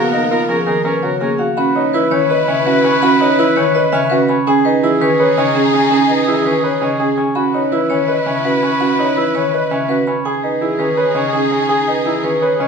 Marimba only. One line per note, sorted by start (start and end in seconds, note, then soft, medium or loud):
0.49 0.72 F3 medium
0.66 0.90 D#3 medium
1.02 1.26 C#3 medium
1.20 1.44 A#3 medium
1.58 1.81 C#4 loud
1.94 2.17 E3 medium
2.12 2.35 D#3 loud
2.48 2.71 C#3 medium
2.66 2.89 C#4 medium
3.02 3.26 C#4 loud
3.39 3.62 E3 medium
3.57 3.80 D#3 loud
3.93 4.16 C#3 medium
4.11 4.34 C#4 loud
4.47 4.70 C#4 loud
4.83 5.06 E3 medium
5.01 5.24 D#3 loud
5.37 5.60 C#3 medium
5.55 5.78 C#4 loud
5.91 6.15 C#4 medium
6.28 6.51 E3 medium
6.46 6.69 D#3 medium
6.82 7.05 C#3 medium
7.00 7.23 C#4 medium
7.36 7.59 C#4 medium
7.72 7.96 E3 medium
7.90 8.14 D#3 medium
8.27 8.50 C#3 medium
8.45 8.68 C#4 medium
8.81 9.04 C#4 medium
9.17 9.40 E3 medium
9.35 9.58 D#3 medium
9.71 9.94 C#3 medium
9.88 10.12 C#4 medium
10.61 10.84 E3 medium
10.79 11.02 D#3 medium
11.15 11.39 C#3 medium
11.34 11.57 C#4 medium
12.06 12.29 E3 medium
12.24 12.47 D#3 medium
12.60 12.68 C#3 medium